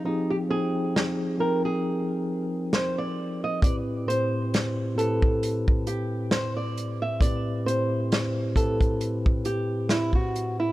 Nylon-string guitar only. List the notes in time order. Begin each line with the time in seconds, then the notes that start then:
0.05 D#4
0.30 G4
0.51 G#4
1.40 A#4
1.65 G#4
2.74 C5
2.98 D5
3.44 D#5
3.63 D5
4.08 C5
4.98 A4
5.87 G4
6.32 C5
6.57 D5
7.02 E5
7.22 D5
7.66 C5
8.56 A4
9.46 G4
9.91 E4
10.15 F#4
10.60 E4